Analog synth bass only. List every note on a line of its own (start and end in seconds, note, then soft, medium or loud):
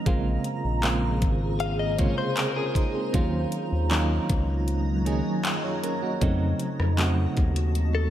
0.06 0.38 A#1 loud
0.64 1.24 A#1 medium
1.22 2.14 G#1 medium
3.14 3.45 D#2 loud
3.72 4.19 D#2 medium
4.30 5.22 C#2 loud
6.22 6.53 F2 loud
6.79 7.26 F2 loud
7.37 8.10 D#2 medium